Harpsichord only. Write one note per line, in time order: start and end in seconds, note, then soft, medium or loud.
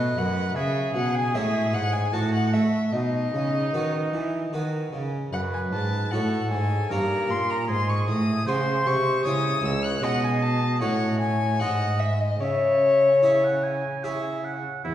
0.00 0.14 B2 medium
0.00 0.53 A3 soft
0.00 0.53 F#4 soft
0.00 0.53 D#5 soft
0.18 0.53 F#2 medium
0.56 0.91 C#3 medium
0.95 1.30 B2 medium
1.34 1.70 A2 medium
1.34 1.91 G#3 medium
1.34 1.92 E4 medium
1.34 1.92 C#5 medium
1.73 2.09 G#2 medium
2.13 2.49 A2 medium
2.13 2.89 F#4 soft
2.13 2.89 C#5 medium
2.54 2.90 A3 medium
2.93 3.29 B2 medium
3.34 3.70 C#3 medium
3.74 4.09 D#3 medium
3.74 4.31 F#4 soft
3.74 4.31 B4 soft
4.13 4.49 E3 medium
4.53 4.89 D#3 medium
4.53 5.11 F#4 soft
4.53 5.11 B4 soft
4.93 5.29 C#3 medium
5.33 5.68 F#2 medium
5.73 6.08 G#2 medium
6.12 6.48 A2 medium
6.12 6.69 F#4 soft
6.12 6.69 C#5 medium
6.51 6.86 G#2 medium
6.91 7.26 G2 medium
6.91 7.65 A#3 soft
6.91 7.65 D#4 soft
6.91 7.66 C#5 soft
7.30 7.65 A#2 medium
7.68 8.04 G#2 medium
8.08 8.43 A2 medium
8.47 8.82 C#3 medium
8.47 9.03 G#3 medium
8.47 9.03 F#4 soft
8.47 9.04 C5 medium
8.86 9.21 C3 medium
9.25 9.60 C#3 medium
9.25 9.99 G#3 medium
9.25 10.00 E4 soft
9.25 10.00 C#5 medium
9.63 9.99 C#2 medium
10.02 10.77 B2 medium
10.02 10.77 G#3 soft
10.02 10.78 D#4 soft
10.02 10.78 D#5 medium
10.81 11.57 A2 medium
10.81 11.57 C#4 soft
10.81 11.57 F#4 soft
10.81 11.57 C#5 medium
11.60 12.37 G#2 medium
11.60 12.37 D#4 soft
11.60 12.38 G#4 soft
11.60 12.38 C5 medium
12.41 14.60 C#3 medium
13.22 13.81 E4 soft
13.22 13.81 G#4 soft
13.22 13.82 C#5 medium
14.04 14.62 E4 soft
14.04 14.62 G#4 soft
14.04 14.62 C#5 medium
14.85 14.95 E2 soft